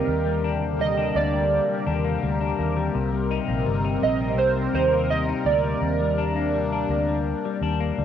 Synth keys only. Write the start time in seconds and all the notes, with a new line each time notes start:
Already playing: A#4
0.81 D#5
1.16 D5
4.03 D#5
4.38 C5
4.75 C5
5.10 D#5
5.46 D5